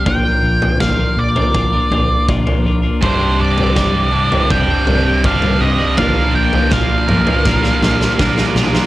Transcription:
<<
  \new Staff \with { instrumentName = "Lead electric guitar" } { \time 4/4 \key bes \mixolydian \tempo 4 = 81 g''4 f''8 d''4. r4 | c''8 d''4. g''4 f''8 ees''8 | f''8 g''8 f''2~ f''8 r8 | }
  \new Staff \with { instrumentName = "Clean electric guitar" } { \time 4/4 \key bes \mixolydian <bes, f bes d' f' bes'>4 <bes, f bes d' f' bes'>16 <bes d' f' bes'>8 <bes d' f' bes'>16 <bes d' f' bes'>16 <bes d' f' bes'>16 <bes d' f' bes'>8 <bes, f bes d' f' bes'>16 <bes d' f' bes'>16 <bes d' f' bes'>16 <bes d' f' bes'>16 | <c, g, c g d'>4 <c, g, c g d'>16 <c g d'>8 <c g d'>16 <g, c g d'>16 <c g d'>16 <g, c g d'>8 <c, g, c g d'>16 <c g>16 <g, c g>16 <c g d'>16 | <bes, f bes d' f' bes'>4 <bes, f bes d' f' bes'>16 <bes d' f' bes'>8 <bes d' f' bes'>16 <bes d' f' bes'>16 <bes d' f' bes'>16 <bes d' f' bes'>8 <bes, f bes d' f' bes'>16 <bes d' f' bes'>16 <bes d' f' bes'>16 <bes d' f' bes'>16 | }
  \new Staff \with { instrumentName = "Distorted electric guitar" } { \clef bass \time 4/4 \key bes \mixolydian r1 | <c, g, c g d'>4. <c, g, c g d'>4. <c, g, c g d'>4 | <bes, f bes d' f' bes'>4. <bes, f bes d' f' bes'>4. <bes, f bes d' f' bes'>4 | }
  \new Staff \with { instrumentName = "Fingered electric bass" } { \clef bass \time 4/4 \key bes \mixolydian bes,,8 bes,,8 bes,,8 bes,,8 bes,,8 bes,,8 bes,,8 bes,,8 | c,,8 c,,8 c,,8 c,,8 f,,8 c,,8 c,,8 c,,8 | bes,,8 bes,,8 bes,,8 bes,,8 bes,,8 bes,,8 bes,,8 b,,8 | }
  \new DrumStaff \with { instrumentName = "Drums" } \drummode { \time 4/4 <bd tomfh>8. tomfh16 <bd sn>8. tomfh16 bd8 tomfh8 bd16 tomfh8. | <bd tomfh>8. tomfh16 <bd sn>8. tomfh16 bd8 tomfh8 bd16 tomfh8. | <bd tomfh>8. tomfh16 <bd sn>8 toml16 tomfh16 <bd sn>16 sn16 sn16 sn16 <bd sn>16 sn16 sn16 sn16 | }
>>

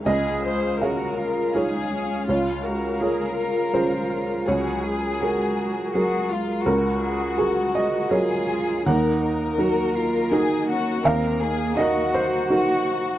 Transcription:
<<
  \new Staff \with { instrumentName = "Felt piano" } { \time 3/4 \key des \major \tempo 4 = 82 << { ees''2. | des''4 r4 c''4 | des''2. | bes'4 aes'8 ees''8 des''4 |
ges''2. | f''4 ees''8 c''8 r4 | } \\ { des,4 <aes' des'' f''>4 <f' aes' des''>4 | des,4 <f' aes' des''>4 <des' f' aes'>4 | des,4 <ges' aes' bes'>4 <ges aes' bes'>4 | des,4 <ges' bes'>4 <ges aes' bes'>4 |
ees,4 <ges ees' bes'>4 <ees' ges' bes'>4 | ees,4 <ees' ges' bes'>4 <ees' ges' bes'>4 | } >> }
  \new Staff \with { instrumentName = "Violin section" } { \time 3/4 \key des \major aes'8 c''8 bes'4 aes'4 | f'8 bes'2~ bes'8 | aes'2 ges'8 f'8 | ges'2 aes'4 |
bes'8 bes'4. aes'8 ges'8 | bes'8 aes'8 ges'4 ges'4 | }
  \new Staff \with { instrumentName = "Cello" } { \time 3/4 \key des \major aes'4 ges'8 f'8 ees'8 des'8 | f'8 ges'8 aes'8 f'4. | ges'8 aes'8 ges'4 aes'8 f'8 | ges'8 aes'8 ges'4 f'4 |
ees'4 ges'8 f'8 ees'8 des'8 | c'8 bes8 ges'2 | }
  \new Staff \with { instrumentName = "String section" } { \time 3/4 \key des \major <aes des' f''>2.~ | <aes des' f''>2. | <ges aes bes'>2.~ | <ges aes bes'>2. |
<bes ees' bes'>2.~ | <bes ees' bes'>2. | }
>>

